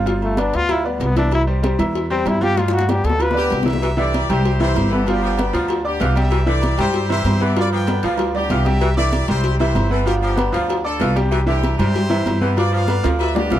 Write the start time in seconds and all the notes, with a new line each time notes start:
Already playing: G1
0.06 F3 F4 F5, cowbell, high conga, low agogo
0.22 A3, high conga, low agogo
0.37 B3 D4 B4 D5, cowbell, high conga, low timbale, low agogo
0.53 D2 F4, cowbell, high conga, low agogo
0.69 F3 E4 F4 F5, cowbell, high conga, low agogo
0.84 G3 B3 B4 D5, high conga
1.00 C2 B3, cowbell, high conga, low timbale, low agogo
1.16 E3 D4 E4 E5, cowbell, high conga, low agogo
1.31 E4, cowbell, low agogo
1.47 G3 G4 C5, high conga
1.63 G3 G4 C5, cowbell, high conga, low timbale, low agogo
1.79 E2 E3 E4 E5, cowbell, high conga, low conga, low agogo
1.95 cowbell, high conga
2.10 G3 C4 G4 C5, high conga, low agogo
2.25 G2 E4, cowbell, high conga, low timbale, low agogo
2.41 F3 F4 G4 F5, high conga
2.57 F3 F4 F5, cowbell, high bongo, low agogo
2.68 high bongo
2.73 F#4, high conga, low agogo
2.79 high bongo
2.88 B3 G4 B4 D5, cowbell, high bongo, high conga, low timbale, low agogo
3.04 D2 A4, cowbell, high conga, low agogo
3.10 low bongo
3.19 F3 F4 B4 F5, cowbell, high conga, low agogo
3.31 B3 B4 D5, low bongo
3.36 B3 D4 G4, high conga
3.50 C2, cowbell, high conga, low timbale, low agogo
3.63 E3 E4 E5, low bongo, low agogo
3.67 G4 E5, cowbell, high conga
3.73 low bongo
3.81 E3, cowbell, low agogo
3.97 D3 E3 E4 G4 D5 E5, high conga
4.14 cowbell, high conga, low timbale, low agogo
4.29 C2 C3 G3 E4 G4 C5 G5, cowbell, high conga, low conga, low agogo
4.45 cowbell, high conga
4.60 C3 E3 E4 G4 C5 E5, low agogo
4.76 G1, cowbell, high conga, low timbale, low agogo
4.91 E3 B3 A4 B4 B5, high conga
5.06 F3 B3 D4 F4 G4 F5, cowbell, high conga, low agogo
5.22 F3 B3 D4 G4, high conga, low agogo
5.37 B3 B4 B5, cowbell, high conga, low timbale, low agogo
5.53 D2 F3 F4 F5, cowbell, high conga, low agogo
5.68 cowbell, high conga, low agogo
5.85 B3 D4 G4 D5 D6, high conga
6.00 C2 E3 F4 F5 F6, cowbell, high conga, low timbale, low agogo
6.16 G3 G4 E5 G5, cowbell, high conga, low agogo
6.30 E3, cowbell, low agogo
6.46 D3 E3 E4 G4 D5 E5, high conga
6.62 cowbell, high conga, low timbale, low agogo
6.78 G2 C3 G3 E4 G4 C5 G5, cowbell, high conga, low conga, low agogo
6.94 cowbell, high conga
7.09 C3 E3 E4 G4 C5 E5, low agogo
7.24 G2, cowbell, high conga, low timbale, low agogo
7.41 E3 B3 B4 D5 B5, high conga
7.56 F3 F4 B4 D5 F5, cowbell, high conga, high timbale, low agogo
7.72 F3 B4 D5 G5, high conga, low agogo
7.87 B3 B4 B5, cowbell, high conga, high timbale, low agogo
8.03 D2 F3 F4 F5, cowbell, high conga, low agogo
8.17 cowbell, high conga, low timbale, low agogo
8.35 B3 D4 G4 D5 D6, high conga, low timbale
8.50 C2 E3 F4 F5 F6, cowbell, high conga, low timbale, low agogo
8.65 G3 G4 E5 G5, cowbell, high conga, low timbale, low agogo
8.81 E3, cowbell, low agogo
8.96 D3 E3 E4 G4 D5 E5
9.13 cowbell, high conga, low timbale, low agogo
9.28 C2 C3 G3 E4 G4 C5 G5, cowbell, high conga, low conga, low agogo
9.44 cowbell, high conga
9.57 C3 E3 E4 G4 C5 E5, high conga, low agogo
9.75 G1, cowbell, high conga, low timbale, low agogo
9.90 E3 B3 A4 B4 B5, high conga
10.05 F3 B3 D4 F4 G4 F5, cowbell, high conga, low agogo
10.22 F3 B3 D4 G4, high conga, low agogo
10.36 B3 B4 B5, cowbell, high conga, low timbale, low agogo
10.52 D2 F3 F4 F5, cowbell, high conga, low agogo
10.69 cowbell, high conga, low agogo
10.84 D4 F4 A4 D5 D6, high conga
11.00 C2 E3 F4 F5 F6, cowbell, high conga, low timbale, low agogo
11.16 G3 D4 E4 G4 G5, cowbell, high conga, low agogo
11.31 E3, cowbell, low agogo
11.46 D3 E3 D4 E4 G4 E5, high conga
11.63 cowbell, high conga, low timbale, low agogo
11.78 G2 C3 G3 E4 G4 C5 G5, cowbell, high conga, low conga, low agogo
11.95 cowbell, high conga, low conga
12.10 C3 E3 E4 E5, high conga, low agogo
12.26 G2, cowbell, high conga, low timbale, low agogo
12.41 E3 B3 B4 B5, high conga
12.57 F3 F4 B4 D5 F5, cowbell, low agogo
12.72 F3 B4 D5 F5, high conga, low agogo
12.88 B3 B4 B5, cowbell, high conga, high timbale, low agogo
13.03 D2 F3 F4 F5, cowbell, high conga, high timbale, low agogo
13.19 B4 E5, cowbell, high conga, low agogo
13.35 B3 D4 F4 G4 B4 D5 D6, high bongo, high conga, low timbale
13.50 C2 E3 F4 F5 F6, cowbell, high bongo, high conga, low timbale, low agogo